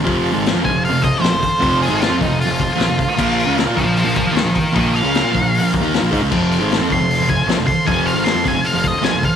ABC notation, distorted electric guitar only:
X:1
M:4/4
L:1/16
Q:1/4=154
K:F
V:1 name="Distorted electric guitar" clef=bass
[F,,C,F,]3 [_A,,_E,_A,]2 [F,C] [F,,C,] [F,,C,]2 [F,,C,]2 z [B,,F,] [F,,C,] z2 | [F,,C,F,]3 [_A,,_E,_A,]2 [F,C] [F,,C,] [F,,C,]2 [F,,C,]2 z [B,,F,] [F,,C,] z2 | [B,,F,B,]3 [_D,_A,_D]2 [B,F] [B,,F,] [B,,F,]2 [B,,F,]2 z [_E,B,] [B,,F,] z2 | [B,,F,B,]3 [_D,_A,_D]2 [B,F] [B,,F,] [B,,F,]2 [B,,F,]2 [_E,B,_E]2 [B,,F,] [A,E] [D,A,] |
[F,,C,F,]3 [_A,,_E,_A,]2 [F,C] [F,,C,] [F,,C,]2 [F,,C,]2 z [B,,F,] [F,,C,] z2 | [F,,C,F,]3 [_A,,_E,_A,]2 [F,C] [F,,C,] [F,,C,]2 [F,,C,]2 z [B,,F,] [F,,C,] z2 |]